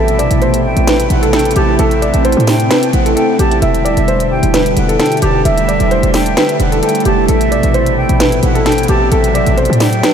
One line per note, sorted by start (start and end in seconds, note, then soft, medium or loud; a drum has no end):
0.00 0.29 A1 loud
0.00 1.77 B2 medium
0.00 3.59 C3 medium
0.00 3.59 A3 medium
0.00 7.25 E4 loud
0.00 0.15 A4 medium
0.00 0.60 E5 loud
0.08 closed hi-hat medium
0.19 0.38 D5 medium
0.19 closed hi-hat medium
0.31 0.75 A1 loud
0.31 closed hi-hat medium
0.42 0.85 C5 medium
0.42 closed hi-hat soft
0.54 closed hi-hat medium
0.64 1.08 G5 medium
0.77 1.09 A1 loud
0.77 closed hi-hat medium
0.87 1.20 B4 medium
0.87 snare loud
0.87 closed hi-hat loud
1.00 closed hi-hat medium
1.10 1.54 A1 loud
1.10 1.32 F#5 medium
1.10 closed hi-hat medium
1.22 1.32 A4 medium
1.22 closed hi-hat medium
1.33 1.53 A4 medium
1.33 1.55 G5 medium
1.33 snare loud
1.33 closed hi-hat medium
1.39 closed hi-hat medium
1.45 closed hi-hat medium
1.51 closed hi-hat soft
1.56 1.78 A1 loud
1.56 1.76 G4 medium
1.56 1.78 A5 medium
1.56 closed hi-hat medium
1.79 2.13 A1 loud
1.79 3.60 C4 medium
1.79 1.99 A4 loud
1.79 2.24 E5 loud
1.79 closed hi-hat medium
1.91 closed hi-hat medium
2.02 2.22 D5 medium
2.02 closed hi-hat medium
2.14 2.36 A1 loud
2.14 closed hi-hat medium
2.25 2.68 C5 medium
2.25 closed hi-hat medium
2.32 closed hi-hat medium
2.37 2.69 A2 loud
2.37 closed hi-hat medium
2.47 2.91 G5 medium
2.47 snare loud
2.47 open hi-hat medium
2.60 closed hi-hat medium
2.70 3.03 B4 medium
2.70 snare loud
2.70 closed hi-hat medium
2.83 closed hi-hat medium
2.93 3.15 A1 loud
2.93 3.15 F#5 medium
2.93 closed hi-hat medium
3.06 3.15 A4 medium
3.06 closed hi-hat medium
3.16 3.36 A4 medium
3.16 3.38 G5 medium
3.16 closed hi-hat medium
3.39 3.61 A1 loud
3.39 3.59 G4 medium
3.39 3.61 A5 medium
3.39 closed hi-hat medium
3.51 closed hi-hat soft
3.62 3.96 E1 loud
3.62 5.44 B2 medium
3.62 7.25 D3 medium
3.62 7.25 G3 medium
3.62 3.82 E5 medium
3.62 4.27 E5 loud
3.62 closed hi-hat medium
3.75 closed hi-hat medium
3.85 4.05 D5 medium
3.85 closed hi-hat medium
3.97 4.41 E1 loud
3.97 closed hi-hat medium
4.08 4.51 C5 medium
4.08 closed hi-hat soft
4.20 closed hi-hat medium
4.31 4.74 G5 medium
4.43 4.75 E1 loud
4.43 closed hi-hat medium
4.54 4.87 B4 medium
4.54 snare loud
4.54 closed hi-hat medium
4.66 closed hi-hat medium
4.77 4.99 E1 loud
4.77 4.98 F#5 medium
4.77 closed hi-hat medium
4.89 4.98 A4 medium
4.89 closed hi-hat medium
4.99 5.19 A4 medium
4.99 5.21 G5 medium
4.99 snare loud
4.99 closed hi-hat medium
5.06 closed hi-hat medium
5.12 closed hi-hat medium
5.17 closed hi-hat soft
5.22 5.44 E1 loud
5.22 5.42 G4 medium
5.22 5.44 A5 medium
5.22 closed hi-hat medium
5.45 5.79 E1 loud
5.45 10.14 A3 medium
5.45 5.65 E5 medium
5.45 6.10 E5 loud
5.45 closed hi-hat medium
5.58 closed hi-hat medium
5.68 5.88 D5 medium
5.68 closed hi-hat medium
5.80 6.02 E1 loud
5.80 closed hi-hat medium
5.91 6.34 C5 loud
5.91 closed hi-hat soft
6.03 6.36 E1 loud
6.03 closed hi-hat medium
6.14 6.57 G5 medium
6.14 snare loud
6.14 open hi-hat medium
6.26 closed hi-hat medium
6.37 6.70 B4 medium
6.37 snare loud
6.37 closed hi-hat medium
6.49 closed hi-hat medium
6.60 6.82 E1 loud
6.60 6.82 F#5 medium
6.60 closed hi-hat medium
6.72 6.81 A4 medium
6.72 closed hi-hat medium
6.83 7.02 A4 medium
6.83 7.04 G5 medium
6.83 closed hi-hat medium
6.89 closed hi-hat medium
6.95 closed hi-hat medium
7.00 closed hi-hat soft
7.05 7.28 E1 loud
7.05 7.25 G4 medium
7.05 7.28 A5 medium
7.05 closed hi-hat medium
7.29 7.62 A1 loud
7.29 10.14 B2 medium
7.29 10.14 C3 medium
7.29 9.10 E4 medium
7.29 7.48 A4 medium
7.29 7.93 E5 loud
7.29 closed hi-hat medium
7.41 closed hi-hat medium
7.51 7.71 D5 medium
7.51 closed hi-hat medium
7.63 8.08 A1 loud
7.63 closed hi-hat medium
7.74 8.17 C5 medium
7.74 closed hi-hat soft
7.86 closed hi-hat medium
7.97 8.40 G5 medium
8.09 8.42 A1 loud
8.09 closed hi-hat medium
8.20 8.53 B4 medium
8.20 snare loud
8.20 closed hi-hat medium
8.32 closed hi-hat medium
8.43 8.87 A1 loud
8.43 8.65 F#5 medium
8.43 closed hi-hat medium
8.55 8.64 A4 medium
8.55 closed hi-hat medium
8.66 8.86 A4 medium
8.66 8.88 G5 medium
8.66 snare loud
8.66 closed hi-hat medium
8.72 closed hi-hat medium
8.78 closed hi-hat medium
8.83 closed hi-hat soft
8.88 9.11 A1 loud
8.88 9.09 G4 medium
8.88 9.11 A5 medium
8.88 closed hi-hat medium
9.12 9.45 A1 loud
9.12 10.14 F#3 medium
9.12 9.31 A4 loud
9.12 9.58 E5 loud
9.12 closed hi-hat medium
9.24 closed hi-hat medium
9.35 9.54 D5 medium
9.35 closed hi-hat medium
9.46 9.69 A1 loud
9.46 closed hi-hat medium
9.57 10.01 C5 medium
9.57 closed hi-hat medium
9.65 closed hi-hat medium
9.70 10.02 A2 loud
9.70 closed hi-hat medium
9.80 10.14 G5 medium
9.80 snare loud
9.80 open hi-hat medium
9.93 closed hi-hat medium
10.03 10.14 B4 medium
10.03 snare loud
10.03 closed hi-hat medium